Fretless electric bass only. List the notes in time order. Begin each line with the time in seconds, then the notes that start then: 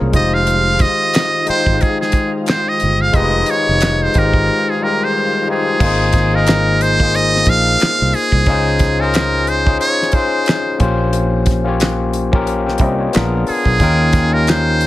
0.01 C2
0.15 F1
1.49 muted fretless electric bass stroke
1.68 G#1
2.83 G1
3.15 F1
3.68 F1
4.16 G#1
5.81 G#1
7.48 A#1
7.83 muted fretless electric bass stroke
8.01 C2
8.33 C2
8.48 C#2
10.81 A#1
12.81 C2
13.16 A#1
13.49 muted fretless electric bass stroke
13.67 B1
13.81 D#2